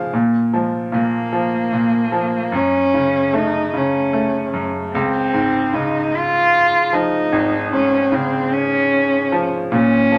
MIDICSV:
0, 0, Header, 1, 3, 480
1, 0, Start_track
1, 0, Key_signature, -5, "major"
1, 0, Tempo, 801389
1, 77, Time_signature, 6, 3, 24, 8
1, 6099, End_track
2, 0, Start_track
2, 0, Title_t, "Cello"
2, 0, Program_c, 0, 42
2, 322, Note_on_c, 0, 56, 57
2, 429, Note_off_c, 0, 56, 0
2, 559, Note_on_c, 0, 58, 81
2, 1528, Note_on_c, 0, 61, 86
2, 1537, Note_off_c, 0, 58, 0
2, 2009, Note_on_c, 0, 63, 77
2, 2018, Note_off_c, 0, 61, 0
2, 2253, Note_on_c, 0, 61, 70
2, 2262, Note_off_c, 0, 63, 0
2, 2785, Note_off_c, 0, 61, 0
2, 2961, Note_on_c, 0, 60, 82
2, 3441, Note_on_c, 0, 63, 75
2, 3450, Note_off_c, 0, 60, 0
2, 3689, Note_on_c, 0, 65, 98
2, 3698, Note_off_c, 0, 63, 0
2, 4159, Note_on_c, 0, 63, 86
2, 4168, Note_off_c, 0, 65, 0
2, 4627, Note_off_c, 0, 63, 0
2, 4631, Note_on_c, 0, 61, 78
2, 4874, Note_on_c, 0, 60, 74
2, 4883, Note_off_c, 0, 61, 0
2, 5111, Note_on_c, 0, 61, 86
2, 5120, Note_off_c, 0, 60, 0
2, 5653, Note_off_c, 0, 61, 0
2, 5824, Note_on_c, 0, 61, 88
2, 6099, Note_off_c, 0, 61, 0
2, 6099, End_track
3, 0, Start_track
3, 0, Title_t, "Grand piano"
3, 0, Program_c, 1, 0
3, 0, Control_c, 1, 64, 127
3, 0, Note_on_c, 1, 44, 39
3, 0, Note_on_c, 1, 49, 35
3, 0, Note_on_c, 1, 53, 51
3, 0, Note_on_c, 1, 77, 60
3, 0, Note_on_c, 1, 80, 45
3, 62, Note_off_c, 1, 49, 0
3, 62, Note_off_c, 1, 77, 0
3, 71, Note_off_c, 1, 53, 0
3, 81, Note_on_c, 1, 46, 59
3, 85, Control_c, 1, 64, 0
3, 91, Note_off_c, 1, 44, 0
3, 92, Note_off_c, 1, 80, 0
3, 188, Control_c, 1, 64, 127
3, 321, Note_on_c, 1, 53, 45
3, 543, Note_off_c, 1, 46, 0
3, 552, Note_on_c, 1, 46, 46
3, 785, Note_off_c, 1, 53, 0
3, 794, Note_on_c, 1, 53, 48
3, 1025, Note_off_c, 1, 46, 0
3, 1034, Note_on_c, 1, 46, 41
3, 1262, Note_off_c, 1, 53, 0
3, 1271, Note_on_c, 1, 53, 52
3, 1501, Note_off_c, 1, 46, 0
3, 1507, Note_off_c, 1, 53, 0
3, 1509, Note_on_c, 1, 42, 56
3, 1526, Control_c, 1, 64, 0
3, 1638, Control_c, 1, 64, 127
3, 1761, Note_on_c, 1, 49, 40
3, 1996, Note_on_c, 1, 57, 44
3, 2228, Note_off_c, 1, 49, 0
3, 2237, Note_on_c, 1, 49, 43
3, 2465, Note_off_c, 1, 57, 0
3, 2474, Note_on_c, 1, 57, 39
3, 2707, Note_off_c, 1, 42, 0
3, 2716, Note_on_c, 1, 42, 50
3, 2935, Note_off_c, 1, 49, 0
3, 2941, Note_off_c, 1, 57, 0
3, 2949, Note_off_c, 1, 42, 0
3, 2963, Note_on_c, 1, 37, 57
3, 2964, Control_c, 1, 64, 0
3, 3060, Control_c, 1, 64, 127
3, 3194, Note_on_c, 1, 44, 45
3, 3435, Note_on_c, 1, 49, 48
3, 4131, Note_off_c, 1, 44, 0
3, 4150, Note_on_c, 1, 53, 53
3, 4372, Note_off_c, 1, 49, 0
3, 4376, Note_off_c, 1, 37, 0
3, 4387, Note_on_c, 1, 32, 58
3, 4630, Note_on_c, 1, 44, 42
3, 4863, Note_on_c, 1, 49, 48
3, 5089, Note_off_c, 1, 53, 0
3, 5568, Note_off_c, 1, 44, 0
3, 5584, Note_on_c, 1, 53, 54
3, 5805, Note_off_c, 1, 49, 0
3, 5807, Note_off_c, 1, 32, 0
3, 5820, Note_on_c, 1, 46, 62
3, 5822, Note_off_c, 1, 53, 0
3, 5844, Control_c, 1, 64, 0
3, 5944, Control_c, 1, 64, 127
3, 6062, Note_on_c, 1, 53, 43
3, 6099, Note_off_c, 1, 46, 0
3, 6099, Note_off_c, 1, 53, 0
3, 6099, End_track
0, 0, End_of_file